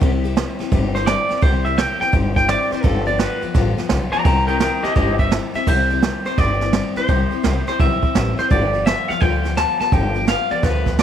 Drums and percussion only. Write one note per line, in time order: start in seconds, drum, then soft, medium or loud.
0.02 kick loud
0.02 ride medium
0.25 ride medium
0.37 snare loud
0.37 ride medium
0.60 snare soft
0.60 ride medium
0.72 kick loud
0.72 ride medium
0.95 snare soft
0.95 ride medium
1.07 snare loud
1.07 ride medium
1.30 snare soft
1.30 ride medium
1.42 kick loud
1.42 ride medium
1.65 ride medium
1.78 snare loud
1.78 ride loud
2.01 snare soft
2.01 ride medium
2.13 kick loud
2.13 ride medium
2.36 kick medium
2.36 snare soft
2.36 ride medium
2.49 snare loud
2.49 ride medium
2.72 snare soft
2.72 ride medium
2.84 kick loud
2.84 ride medium
3.07 ride medium
3.19 snare loud
3.19 ride medium
3.42 ride medium
3.55 kick loud
3.55 snare soft
3.55 ride medium
3.78 snare soft
3.78 ride medium
3.89 snare loud
3.89 ride medium
4.13 ride medium
4.25 kick loud
4.25 ride medium
4.48 ride medium
4.60 snare loud
4.60 ride medium
4.84 snare soft
4.84 ride medium
4.96 kick loud
4.96 snare soft
4.96 ride medium
5.19 kick medium
5.19 ride medium
5.32 snare loud
5.32 ride medium
5.55 snare soft
5.55 ride medium
5.67 kick loud
5.67 crash loud
5.90 ride medium
6.02 snare loud
6.02 ride medium
6.25 snare soft
6.25 ride medium
6.38 kick loud
6.38 snare soft
6.38 ride medium
6.61 snare soft
6.61 ride medium
6.73 snare loud
6.73 ride medium
6.96 snare soft
6.96 ride medium
7.09 kick loud
7.09 ride medium
7.32 ride medium
7.44 snare loud
7.44 ride loud
7.67 snare soft
7.67 ride medium
7.80 kick loud
7.80 ride medium
8.03 kick medium
8.03 ride medium
8.15 snare loud
8.15 ride medium
8.39 snare soft
8.39 ride medium
8.51 kick loud
8.51 ride medium
8.74 ride medium
8.87 snare loud
8.87 ride medium
9.10 snare soft
9.10 ride medium
9.22 kick loud
9.22 ride medium
9.45 snare soft
9.45 ride medium
9.57 snare loud
9.57 ride medium
9.80 snare soft
9.80 ride medium
9.92 kick loud
9.92 ride medium
10.15 ride medium
10.27 snare loud
10.27 ride medium
10.51 ride medium
10.63 kick loud
10.63 snare soft
10.63 ride medium
10.86 kick medium
10.86 snare soft
10.86 ride medium
10.99 snare loud
10.99 ride medium